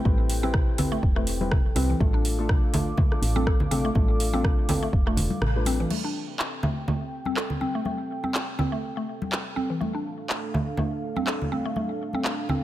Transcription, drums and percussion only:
0.05 kick, high conga
0.30 open hi-hat
0.44 high conga
0.54 kick, cross-stick, mid tom
0.78 open hi-hat, low conga
1.03 kick
1.16 cross-stick
1.27 open hi-hat
1.41 high conga
1.52 kick, cross-stick, mid tom
1.76 open hi-hat, high conga
2.00 kick, high conga
2.25 open hi-hat
2.49 kick, cross-stick, mid tom
2.74 open hi-hat, low conga
2.97 kick, low conga
3.12 cross-stick
3.23 open hi-hat
3.36 high conga
3.47 kick, cross-stick
3.60 low conga
3.71 open hi-hat, mid tom, high conga
3.95 kick, high conga
4.20 open hi-hat
4.33 high conga
4.44 kick, cross-stick, mid tom
4.69 open hi-hat, low conga
4.93 kick
5.07 cross-stick
5.17 open hi-hat, low conga
5.30 high conga
5.42 cross-stick, mid tom
5.65 open hi-hat, high conga
5.90 crash, high conga
6.39 clap
6.63 low conga
6.88 low conga
7.25 high conga
7.37 clap
7.50 low conga
7.61 high conga
7.85 high conga
8.24 high conga
8.35 clap
8.59 low conga
9.22 high conga
9.32 clap
9.57 high conga
9.81 high conga
10.30 clap
10.54 low conga
10.77 low conga
11.16 high conga
11.27 clap
11.42 low conga
11.52 high conga
11.76 high conga
12.13 high conga
12.25 clap
12.49 low conga

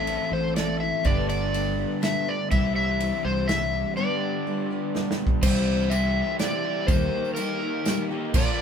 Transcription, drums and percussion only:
0.07 ride
0.56 snare, ride
1.05 kick, ride
1.29 ride
1.54 ride
2.03 snare, ride
2.51 kick, ride
3.00 ride
3.49 snare, ride
4.95 snare
5.11 snare
5.27 kick
5.42 kick, crash, tambourine
5.80 tambourine
5.91 ride, tambourine
6.39 snare, ride, tambourine
6.88 kick, ride, tambourine
7.25 tambourine
7.36 ride, tambourine
7.85 snare, ride, tambourine
8.34 kick, crash, tambourine

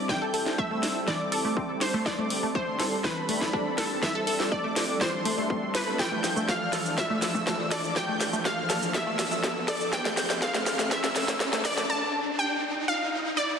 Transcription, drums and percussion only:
0.09 kick, snare
0.34 open hi-hat
0.46 snare
0.58 kick
0.83 snare, open hi-hat
1.08 kick, snare
1.32 open hi-hat
1.57 kick
1.81 snare, open hi-hat
2.06 kick, snare
2.30 open hi-hat
2.55 kick
2.80 snare, open hi-hat
3.04 kick, snare
3.29 open hi-hat
3.41 kick, snare
3.53 kick
3.78 snare, open hi-hat
4.03 kick, snare
4.27 open hi-hat
4.40 snare
4.52 kick
4.76 snare, open hi-hat
5.01 kick, snare
5.25 open hi-hat
5.50 kick
5.75 snare, open hi-hat
5.99 kick, snare, shaker
6.24 snare, open hi-hat, shaker
6.37 shaker
6.48 kick, snare, shaker
6.73 snare, open hi-hat, shaker
6.86 shaker
6.98 kick, snare, shaker
7.22 snare, open hi-hat, shaker
7.35 kick, shaker
7.47 kick, snare, shaker
7.71 snare, open hi-hat, shaker
7.84 shaker
7.96 kick, snare, shaker
8.21 snare, open hi-hat, shaker
8.33 shaker
8.45 kick, snare, shaker
8.70 snare, open hi-hat, shaker
8.83 shaker
8.94 kick, snare, shaker
9.19 snare, open hi-hat, shaker
9.32 shaker
9.44 kick, snare, shaker
9.68 snare, open hi-hat, shaker
9.81 shaker
9.93 kick, snare, shaker
10.05 snare
10.17 snare, open hi-hat, shaker
10.30 snare, shaker
10.42 kick, snare, shaker
10.54 snare
10.66 snare, open hi-hat, shaker
10.79 snare, shaker
10.91 kick, snare, shaker
11.04 snare
11.16 snare, open hi-hat, shaker
11.28 kick, snare, shaker
11.40 kick, snare, shaker
11.53 snare
11.65 snare, open hi-hat, shaker
11.78 snare, shaker

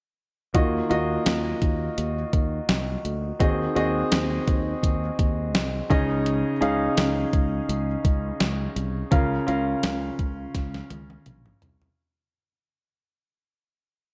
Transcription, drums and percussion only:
0.55 kick, closed hi-hat
0.91 closed hi-hat
1.26 snare, closed hi-hat
1.62 kick, closed hi-hat
1.98 closed hi-hat
2.33 kick, closed hi-hat
2.69 snare, closed hi-hat
3.05 closed hi-hat
3.40 kick, closed hi-hat
3.76 closed hi-hat
4.12 snare, closed hi-hat
4.48 kick, closed hi-hat
4.83 kick, closed hi-hat
5.19 kick, closed hi-hat
5.55 snare, closed hi-hat
5.90 kick, closed hi-hat
6.26 closed hi-hat
6.62 closed hi-hat
6.97 snare, closed hi-hat
7.33 kick, closed hi-hat
7.69 closed hi-hat
8.05 kick, closed hi-hat
8.40 snare, closed hi-hat
8.76 closed hi-hat
9.12 kick, closed hi-hat
9.48 closed hi-hat
9.83 snare, closed hi-hat
10.19 kick, closed hi-hat
10.55 kick, snare, closed hi-hat
10.74 snare
10.90 closed hi-hat, high tom
11.10 high tom
11.26 closed hi-hat, mid tom
11.46 mid tom
11.62 closed hi-hat, floor tom
11.82 floor tom

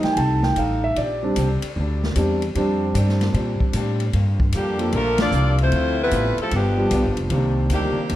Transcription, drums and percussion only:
0.03 snare, ride
0.17 kick, ride
0.43 snare
0.56 kick, hi-hat pedal, ride
0.96 kick, ride
1.36 kick, hi-hat pedal, ride
1.62 ride
1.76 kick
2.03 snare
2.15 kick, hi-hat pedal, ride
2.42 ride
2.55 kick, ride
2.95 kick, hi-hat pedal, ride
3.09 snare
3.21 snare, ride
3.34 kick, ride
3.60 kick
3.73 kick, hi-hat pedal, ride
4.00 ride
4.13 kick, ride
4.40 kick
4.52 kick, hi-hat pedal, ride
4.79 ride
4.92 kick, ride
5.18 snare, ride
5.32 hi-hat pedal
5.58 ride
5.72 kick, ride
6.11 kick, hi-hat pedal, ride
6.38 ride
6.51 kick, ride
6.91 kick, hi-hat pedal, ride
7.17 ride
7.30 kick, ride
7.70 kick, hi-hat pedal, ride
8.09 kick, ride

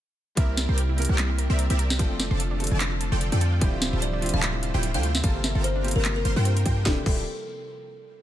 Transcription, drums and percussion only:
0.37 kick, closed hi-hat
0.57 snare, closed hi-hat
0.78 closed hi-hat
0.98 closed hi-hat
1.02 closed hi-hat
1.05 closed hi-hat
1.18 clap, closed hi-hat
1.39 closed hi-hat
1.59 closed hi-hat
1.70 closed hi-hat
1.79 closed hi-hat
1.90 snare
1.99 kick, closed hi-hat
2.20 snare, closed hi-hat
2.40 closed hi-hat
2.60 closed hi-hat
2.64 closed hi-hat
2.67 closed hi-hat
2.80 clap, closed hi-hat
3.01 closed hi-hat
3.21 closed hi-hat
3.32 closed hi-hat
3.41 closed hi-hat
3.61 kick, closed hi-hat
3.82 snare, closed hi-hat
4.02 closed hi-hat
4.22 closed hi-hat
4.26 closed hi-hat
4.29 closed hi-hat
4.43 clap, closed hi-hat
4.63 closed hi-hat
4.83 closed hi-hat
4.94 closed hi-hat
5.03 closed hi-hat
5.15 snare
5.24 kick, closed hi-hat
5.44 snare, closed hi-hat
5.64 closed hi-hat
5.84 closed hi-hat
5.88 closed hi-hat
5.91 closed hi-hat
6.05 clap, closed hi-hat
6.25 closed hi-hat
6.45 closed hi-hat
6.57 closed hi-hat
6.66 kick, closed hi-hat
6.86 kick, snare
7.06 kick, crash

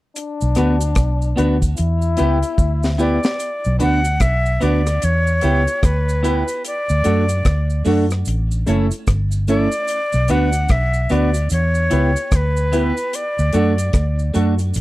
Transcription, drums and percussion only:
0.16 closed hi-hat, cabasa
0.41 cabasa
0.55 cross-stick, closed hi-hat, cabasa
0.81 closed hi-hat, cabasa
0.95 kick, cross-stick, closed hi-hat, cabasa
1.22 cabasa
1.38 closed hi-hat, cabasa
1.62 kick, closed hi-hat, cabasa
1.77 closed hi-hat, cabasa
2.02 cabasa
2.17 closed hi-hat, cabasa
2.43 closed hi-hat, cabasa
2.58 kick, cabasa
2.83 snare, cabasa
2.99 cabasa
3.23 snare, cabasa
3.40 closed hi-hat, cabasa
3.64 cabasa
3.80 closed hi-hat, cabasa
4.05 closed hi-hat, cabasa
4.20 kick, cross-stick, closed hi-hat, cabasa
4.46 cabasa
4.61 closed hi-hat, cabasa
4.87 cross-stick, closed hi-hat, cabasa
5.02 closed hi-hat, cabasa
5.27 cabasa
5.41 closed hi-hat, cabasa
5.67 closed hi-hat, cabasa
5.83 kick, cross-stick, closed hi-hat, cabasa
6.09 cabasa
6.24 closed hi-hat, cabasa
6.48 closed hi-hat, cabasa
6.65 closed hi-hat, cabasa
6.89 cabasa
7.04 closed hi-hat, cabasa
7.29 closed hi-hat, cabasa
7.45 kick, cross-stick, closed hi-hat, cabasa
7.70 cabasa
7.85 open hi-hat, cabasa
8.10 cross-stick, closed hi-hat, cabasa
8.25 closed hi-hat, cabasa
8.51 cabasa
8.67 closed hi-hat, cabasa
8.91 closed hi-hat, cabasa
9.07 kick, cross-stick, closed hi-hat, cabasa
9.32 cabasa
9.48 closed hi-hat, cabasa
9.72 closed hi-hat, cabasa
9.88 closed hi-hat, cabasa
10.12 cabasa
10.28 closed hi-hat, cabasa
10.53 closed hi-hat, cabasa
10.69 kick, cross-stick, closed hi-hat, cabasa
10.94 cabasa
11.09 closed hi-hat, cabasa
11.34 closed hi-hat, cabasa
11.50 closed hi-hat, cabasa
11.75 cabasa
11.91 closed hi-hat, cabasa
12.16 closed hi-hat, cabasa
12.32 kick, cross-stick, closed hi-hat, cabasa
12.57 cabasa
12.73 closed hi-hat, cabasa
12.97 closed hi-hat, cabasa
13.13 closed hi-hat, cabasa
13.39 cabasa
13.53 closed hi-hat, cabasa
13.78 closed hi-hat, cabasa
13.93 kick, cross-stick, closed hi-hat, cabasa
14.19 cabasa
14.34 closed hi-hat, cabasa
14.59 closed hi-hat, cabasa
14.74 closed hi-hat, cabasa

